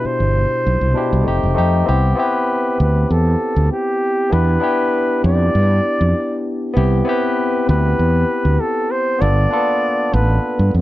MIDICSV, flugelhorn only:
0, 0, Header, 1, 2, 480
1, 0, Start_track
1, 0, Key_signature, 0, "major"
1, 0, Tempo, 610998
1, 1471, Time_signature, 4, 2, 24, 8
1, 8495, End_track
2, 0, Start_track
2, 0, Title_t, "Flugelhorn"
2, 0, Program_c, 0, 56
2, 48, Note_on_c, 0, 72, 90
2, 1240, Note_off_c, 0, 72, 0
2, 1735, Note_on_c, 0, 71, 94
2, 2172, Note_off_c, 0, 71, 0
2, 2207, Note_on_c, 0, 71, 83
2, 2447, Note_on_c, 0, 69, 85
2, 2458, Note_off_c, 0, 71, 0
2, 2919, Note_off_c, 0, 69, 0
2, 2923, Note_on_c, 0, 67, 94
2, 3400, Note_on_c, 0, 71, 97
2, 3412, Note_off_c, 0, 67, 0
2, 4116, Note_off_c, 0, 71, 0
2, 4124, Note_on_c, 0, 74, 97
2, 5047, Note_off_c, 0, 74, 0
2, 5557, Note_on_c, 0, 71, 91
2, 6004, Note_off_c, 0, 71, 0
2, 6040, Note_on_c, 0, 71, 91
2, 6758, Note_on_c, 0, 69, 89
2, 6769, Note_off_c, 0, 71, 0
2, 7000, Note_on_c, 0, 72, 95
2, 7012, Note_off_c, 0, 69, 0
2, 7239, Note_on_c, 0, 74, 107
2, 7251, Note_off_c, 0, 72, 0
2, 7965, Note_on_c, 0, 71, 86
2, 7977, Note_off_c, 0, 74, 0
2, 8440, Note_off_c, 0, 71, 0
2, 8495, End_track
0, 0, End_of_file